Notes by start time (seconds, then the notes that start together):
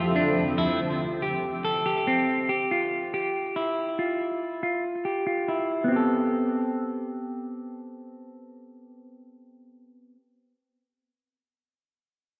Already playing: D3 F3 C4 E4 F4 E5
0.16 D4
0.58 E4
1.22 G4
1.65 A4
1.86 G4
2.07 C4
2.49 G4
2.71 F4
3.14 G4
3.56 E4
3.99 F4
4.63 F4
5.05 G4
5.27 F4
5.48 E4
5.84 B3
5.88 C4
5.92 G4
5.96 A4